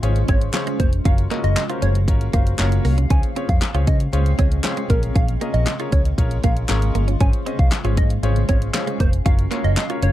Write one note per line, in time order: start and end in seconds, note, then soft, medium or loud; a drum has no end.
0.00 0.22 G#1 loud
0.00 3.07 C#3 medium
0.00 1.01 G#3 medium
0.00 1.03 C#4 medium
0.00 0.20 C#4 medium
0.00 1.01 F4 medium
0.00 0.20 F4 medium
0.00 0.20 G#4 medium
0.00 0.20 C5 medium
0.00 0.20 C#5 loud
0.00 closed hi-hat medium
0.16 closed hi-hat soft
0.28 0.48 G#1 loud
0.28 0.36 C4 medium
0.28 0.45 C#4 medium
0.28 0.45 F4 medium
0.28 0.46 G#4 medium
0.28 0.46 C5 medium
0.28 0.38 C#5 medium
0.28 0.46 C#5 medium
0.28 kick medium
0.28 closed hi-hat medium
0.41 closed hi-hat medium
0.53 0.88 C#4 medium
0.53 0.88 F4 medium
0.53 0.88 G#4 medium
0.53 0.88 C5 medium
0.53 0.88 C#5 loud
0.53 muted clean electric guitar stroke soft
0.53 snare loud
0.53 clap loud
0.53 clap medium
0.53 closed hi-hat medium
0.67 0.75 G#3 medium
0.67 closed hi-hat medium
0.80 0.99 F1 medium
0.80 0.88 A#3 medium
0.80 0.89 C5 medium
0.80 kick loud
0.80 closed hi-hat medium
0.93 closed hi-hat medium
1.05 1.25 F#1 loud
1.05 3.08 F#3 medium
1.05 3.08 A#3 medium
1.05 1.22 C#4 medium
1.05 1.13 C#4 loud
1.05 1.23 F4 medium
1.05 1.23 F#4 medium
1.05 1.23 A#4 medium
1.05 1.23 C#5 medium
1.05 4.86 F5 medium
1.05 1.15 F5 medium
1.05 kick loud
1.05 closed hi-hat medium
1.18 closed hi-hat medium
1.31 1.39 A#3 medium
1.31 1.57 C#4 medium
1.31 1.57 F4 medium
1.31 1.57 F#4 medium
1.31 1.57 A#4 medium
1.31 1.57 D#5 medium
1.31 clap medium
1.31 closed hi-hat medium
1.44 1.53 F#1 loud
1.44 1.63 D#5 medium
1.44 muted clean electric guitar stroke soft
1.44 closed hi-hat soft
1.56 muted clean electric guitar stroke soft
1.56 snare medium
1.56 clap loud
1.56 clap medium
1.56 closed hi-hat medium
1.70 1.95 C#4 medium
1.70 1.77 F4 medium
1.70 1.95 F4 medium
1.70 1.95 F#4 medium
1.70 1.95 A#4 medium
1.70 1.95 C5 medium
1.70 closed hi-hat medium
1.82 2.08 F#1 loud
1.82 1.90 C#4 medium
1.82 1.92 C#5 medium
1.82 closed hi-hat medium
1.95 closed hi-hat medium
2.08 2.27 G#1 loud
2.08 2.25 C#4 medium
2.08 2.25 F4 medium
2.08 2.25 F#4 medium
2.08 2.25 A#4 medium
2.08 2.25 C#5 loud
2.08 kick medium
2.08 closed hi-hat medium
2.21 closed hi-hat medium
2.33 2.53 F#1 loud
2.33 2.41 A#3 medium
2.33 2.50 C#4 medium
2.33 2.51 F4 medium
2.33 2.51 F#4 medium
2.33 2.51 A#4 medium
2.33 2.51 C5 medium
2.33 2.43 F5 medium
2.33 kick medium
2.33 closed hi-hat medium
2.47 closed hi-hat medium
2.59 2.78 F#1 medium
2.59 2.93 C#4 medium
2.59 2.93 F4 medium
2.59 2.93 F#4 medium
2.59 2.93 A#4 medium
2.59 2.94 C#5 loud
2.59 muted clean electric guitar stroke soft
2.59 snare loud
2.59 clap loud
2.59 clap medium
2.59 closed hi-hat medium
2.72 closed hi-hat medium
2.85 3.04 C2 medium
2.85 2.93 A#3 medium
2.85 open hi-hat medium
2.98 3.06 C#4 medium
2.98 closed hi-hat medium
3.10 3.20 C#2 loud
3.10 10.12 C#3 medium
3.10 3.27 C#4 medium
3.10 3.18 C#4 loud
3.10 3.27 F4 medium
3.10 3.28 G#4 medium
3.10 3.28 C5 medium
3.10 3.28 C#5 medium
3.10 3.20 G#5 medium
3.10 kick loud
3.10 closed hi-hat medium
3.23 closed hi-hat medium
3.36 3.44 C4 medium
3.36 3.62 C#4 medium
3.36 3.62 F4 medium
3.36 3.62 G#4 medium
3.36 3.62 C5 medium
3.36 3.62 C#5 medium
3.36 closed hi-hat medium
3.49 3.59 F2 loud
3.49 3.69 F5 medium
3.49 muted clean electric guitar stroke soft
3.49 kick loud
3.49 closed hi-hat soft
3.62 muted clean electric guitar stroke soft
3.62 snare loud
3.62 clap loud
3.62 closed hi-hat medium
3.74 3.84 C#2 loud
3.74 4.00 C#4 medium
3.74 4.00 F4 medium
3.74 3.82 F4 medium
3.74 4.00 G#4 medium
3.74 4.00 C5 medium
3.74 4.00 C#5 medium
3.74 closed hi-hat medium
3.87 4.07 C#3 loud
3.87 3.95 C#4 medium
3.87 3.97 D#5 medium
3.87 kick loud
3.87 closed hi-hat medium
4.00 closed hi-hat medium
4.13 4.32 C#2 loud
4.13 4.30 C#4 medium
4.13 4.30 F4 medium
4.13 4.30 G#4 medium
4.13 4.30 C5 medium
4.13 4.30 C#5 loud
4.13 closed hi-hat medium
4.26 closed hi-hat medium
4.39 4.58 C#2 medium
4.39 4.47 C4 medium
4.39 4.56 C#4 medium
4.39 4.56 F4 medium
4.39 4.56 G#4 medium
4.39 4.56 C5 medium
4.39 4.48 C#5 medium
4.39 4.56 D#5 medium
4.39 kick medium
4.39 closed hi-hat medium
4.52 closed hi-hat medium
4.64 4.88 C#4 medium
4.64 4.88 F4 medium
4.64 4.89 G#4 medium
4.64 4.90 C5 medium
4.64 4.89 C#5 loud
4.64 muted clean electric guitar stroke soft
4.64 snare loud
4.64 clap loud
4.64 clap medium
4.64 closed hi-hat loud
4.77 4.85 G#3 medium
4.77 closed hi-hat medium
4.90 5.09 A#1 loud
4.90 7.19 G#3 medium
4.90 4.98 A#3 medium
4.90 7.19 A#3 medium
4.90 5.31 C#4 medium
4.90 5.31 F4 medium
4.90 7.18 F4 medium
4.90 5.31 G#4 medium
4.90 5.00 A#4 medium
4.90 5.31 A#4 medium
4.90 5.31 C#5 medium
4.90 kick loud
4.90 closed hi-hat medium
5.03 closed hi-hat medium
5.15 5.35 A#1 loud
5.15 5.23 C#4 loud
5.15 5.25 F5 medium
5.15 kick loud
5.15 closed hi-hat medium
5.28 closed hi-hat medium
5.41 5.49 A#3 medium
5.41 5.67 C#4 medium
5.41 5.67 F4 medium
5.41 5.67 G#4 medium
5.41 5.67 A#4 medium
5.41 5.67 D#5 medium
5.41 closed hi-hat medium
5.54 5.64 A#1 medium
5.54 5.73 D#5 medium
5.54 muted clean electric guitar stroke soft
5.54 closed hi-hat soft
5.66 muted clean electric guitar stroke medium
5.66 snare loud
5.66 clap loud
5.66 clap medium
5.66 closed hi-hat medium
5.80 6.05 C#4 medium
5.80 5.88 F4 medium
5.80 6.05 F4 medium
5.80 6.05 G#4 medium
5.80 6.06 A#4 medium
5.80 6.06 C#5 medium
5.80 closed hi-hat medium
5.92 6.12 C#2 loud
5.92 6.00 C#4 medium
5.92 6.02 C#5 medium
5.92 kick loud
5.92 closed hi-hat medium
6.05 closed hi-hat medium
6.18 6.37 A#1 loud
6.18 6.35 C#4 medium
6.18 6.35 F4 medium
6.18 6.35 G#4 medium
6.18 6.35 A#4 medium
6.18 6.35 C#5 loud
6.18 kick medium
6.18 closed hi-hat medium
6.31 closed hi-hat medium
6.44 6.63 A#1 loud
6.44 6.52 A#3 medium
6.44 6.61 C#4 medium
6.44 6.61 F4 medium
6.44 6.61 G#4 medium
6.44 6.61 A#4 medium
6.44 6.61 C#5 medium
6.44 6.54 F5 medium
6.44 kick medium
6.44 closed hi-hat medium
6.57 closed hi-hat medium
6.69 6.88 G#1 loud
6.69 7.04 C#4 medium
6.69 7.04 F4 medium
6.69 7.04 G#4 medium
6.69 7.04 A#4 medium
6.69 7.04 C#5 loud
6.69 muted clean electric guitar stroke soft
6.69 snare loud
6.69 clap loud
6.69 clap medium
6.69 closed hi-hat medium
6.82 closed hi-hat medium
6.95 7.14 G1 medium
6.95 7.03 A#3 medium
6.95 closed hi-hat medium
7.08 7.16 C#4 medium
7.08 closed hi-hat medium
7.20 7.30 G#1 loud
7.20 9.24 G#3 medium
7.20 7.38 C#4 medium
7.20 7.28 C#4 loud
7.20 9.24 C#4 medium
7.20 7.38 F4 medium
7.20 7.38 G#4 medium
7.20 7.38 C5 medium
7.20 7.38 C#5 medium
7.20 10.12 F5 medium
7.20 7.30 G#5 medium
7.20 kick loud
7.20 closed hi-hat medium
7.33 closed hi-hat medium
7.46 7.54 C4 medium
7.46 7.72 C#4 medium
7.46 7.72 F4 medium
7.46 7.72 G#4 medium
7.46 7.72 C5 medium
7.46 7.72 D#5 medium
7.46 closed hi-hat medium
7.59 7.69 C2 medium
7.59 7.79 F5 medium
7.59 muted clean electric guitar stroke soft
7.59 kick loud
7.59 closed hi-hat soft
7.72 muted clean electric guitar stroke soft
7.72 snare loud
7.72 clap loud
7.72 clap medium
7.72 closed hi-hat medium
7.84 7.99 G#1 loud
7.84 8.10 C#4 medium
7.84 8.10 F4 medium
7.84 7.93 F4 medium
7.84 8.10 G#4 medium
7.84 8.10 C5 medium
7.84 8.11 C#5 medium
7.84 closed hi-hat medium
7.97 8.17 G#2 loud
7.97 8.05 C#4 medium
7.97 8.08 D#5 medium
7.97 kick loud
7.97 closed hi-hat medium
8.10 closed hi-hat medium
8.23 8.42 G#1 loud
8.23 8.40 C#4 medium
8.23 8.40 F4 medium
8.23 8.40 G#4 medium
8.23 8.40 C5 medium
8.23 8.41 C#5 loud
8.23 closed hi-hat loud
8.36 closed hi-hat medium
8.49 8.68 G#1 medium
8.49 8.57 C4 medium
8.49 8.66 C#4 medium
8.49 8.66 F4 medium
8.49 8.66 G#4 medium
8.49 8.66 C5 medium
8.49 8.59 C#5 medium
8.49 8.66 C#5 medium
8.49 kick medium
8.49 closed hi-hat medium
8.62 closed hi-hat medium
8.74 9.09 C#4 medium
8.74 9.09 F4 medium
8.74 9.09 G#4 medium
8.74 9.09 C5 medium
8.74 9.09 C#5 loud
8.74 muted clean electric guitar stroke soft
8.74 snare loud
8.74 clap loud
8.74 clap medium
8.74 closed hi-hat medium
8.87 8.95 G#3 medium
8.87 closed hi-hat medium
9.00 9.19 F1 medium
9.00 9.08 A#3 medium
9.00 9.10 C5 medium
9.00 kick loud
9.00 closed hi-hat medium
9.13 closed hi-hat medium
9.25 9.45 F#1 loud
9.25 9.43 C#4 medium
9.25 9.34 C#4 loud
9.25 9.43 F4 medium
9.25 9.43 F#4 medium
9.25 9.43 A#4 medium
9.25 9.43 C#5 medium
9.25 9.35 F5 medium
9.25 kick loud
9.25 closed hi-hat medium
9.39 closed hi-hat medium
9.51 9.59 A#3 medium
9.51 9.77 C#4 medium
9.51 9.77 F4 medium
9.51 9.77 F#4 medium
9.51 9.77 A#4 medium
9.51 9.77 C#5 medium
9.51 clap medium
9.51 closed hi-hat medium
9.64 9.74 F#1 loud
9.64 9.84 D#5 medium
9.64 muted clean electric guitar stroke soft
9.64 closed hi-hat soft
9.77 muted clean electric guitar stroke soft
9.77 snare loud
9.77 clap medium
9.77 clap loud
9.77 closed hi-hat loud
9.90 10.12 C#4 medium
9.90 10.12 F4 medium
9.90 9.98 F4 medium
9.90 10.12 F#4 medium
9.90 10.12 A#4 medium
9.90 10.12 C#5 medium
9.90 closed hi-hat medium
10.02 10.12 F#1 loud
10.02 10.11 C#4 medium
10.02 10.12 C#5 medium
10.02 closed hi-hat medium